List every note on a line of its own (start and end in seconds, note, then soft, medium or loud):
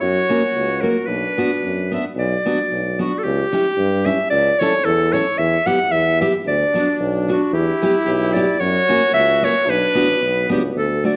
0.01 0.20 F#2 loud
0.01 1.10 F#4 medium
0.01 0.82 C#5 loud
0.29 0.41 A#3 medium
0.29 0.42 C#4 medium
0.29 0.42 F#4 medium
0.55 0.90 C#2 medium
0.81 0.95 A#3 medium
0.81 0.95 C#4 soft
0.81 0.95 F#4 medium
0.81 1.07 A#4 medium
1.05 1.27 B1 medium
1.05 1.92 D4 medium
1.05 1.90 B4 medium
1.38 1.49 B3 medium
1.38 1.49 D4 soft
1.38 1.50 F#4 medium
1.62 1.98 F#2 medium
1.91 2.03 B3 medium
1.91 2.03 D4 soft
1.91 2.03 F#4 medium
1.91 2.04 E5 medium
2.16 2.35 B1 loud
2.16 2.97 D5 loud
2.46 2.57 B3 medium
2.46 2.58 D4 medium
2.46 2.58 F#4 medium
2.71 3.06 B1 medium
2.99 3.11 B3 medium
2.99 3.11 D4 medium
2.99 3.11 F#4 medium
2.99 3.20 F#4 medium
3.18 3.25 A4 medium
3.23 3.43 C#2 loud
3.23 4.07 G4 loud
3.52 3.64 C#4 medium
3.52 3.65 E4 medium
3.52 3.65 G4 medium
3.77 4.13 G2 loud
4.06 4.18 C#4 medium
4.06 4.18 E4 medium
4.06 4.18 G4 medium
4.06 4.30 E5 loud
4.31 4.50 C#2 loud
4.31 4.61 D5 loud
4.59 4.72 C#4 medium
4.59 4.72 E4 medium
4.59 4.73 A4 loud
4.59 4.87 C#5 loud
4.85 5.20 E2 loud
4.85 5.15 A4 loud
5.13 5.25 C#4 medium
5.13 5.25 E4 soft
5.13 5.25 A4 medium
5.13 5.40 C#5 loud
5.38 5.58 E2 loud
5.38 5.68 E5 loud
5.66 5.78 B3 medium
5.66 5.78 E4 medium
5.66 5.79 G4 medium
5.66 5.93 F#5 loud
5.91 6.27 E2 loud
5.91 6.20 E5 loud
6.20 6.32 B3 medium
6.20 6.33 E4 medium
6.20 6.33 G4 medium
6.20 6.32 E5 medium
6.46 6.65 D2 loud
6.46 7.55 D4 medium
6.46 6.97 D5 loud
6.74 6.86 B3 medium
6.74 6.87 D4 medium
6.74 6.87 F#4 medium
7.00 7.35 B1 loud
7.28 7.40 B3 medium
7.28 7.40 D4 medium
7.28 7.40 F#4 medium
7.28 7.53 F#4 medium
7.52 7.71 E2 loud
7.52 8.60 E4 loud
7.52 8.03 G4 medium
7.82 7.93 B3 medium
7.82 7.94 E4 medium
7.82 7.94 G4 medium
8.05 8.42 B1 loud
8.05 8.35 G4 loud
8.33 8.46 B3 medium
8.33 8.46 E4 medium
8.33 8.47 G4 medium
8.33 8.61 D5 loud
8.60 8.79 F#2 loud
8.60 9.68 F#4 loud
8.60 9.13 C#5 loud
8.89 9.00 A#3 medium
8.89 9.00 C#4 medium
8.89 9.00 F#4 medium
9.13 9.48 C#2 loud
9.13 9.45 E5 loud
9.42 9.53 A#3 medium
9.42 9.53 C#4 medium
9.42 9.53 F#4 medium
9.42 9.72 C#5 loud
9.66 9.85 B1 loud
9.66 10.24 D4 medium
9.70 10.51 B4 loud
9.95 10.18 A1 medium
9.95 10.06 B3 medium
9.95 10.07 D4 medium
9.95 10.07 F#4 medium
10.20 10.47 B1 medium
10.20 10.76 B3 medium
10.50 10.72 C#2 medium
10.50 10.61 B3 medium
10.50 10.61 D4 medium
10.50 10.62 F#4 medium
10.50 10.63 G4 medium
10.76 11.11 D2 loud
10.76 11.03 A4 loud
11.04 11.15 A3 medium
11.04 11.15 D4 medium
11.04 11.16 F#4 medium
11.04 11.16 D5 medium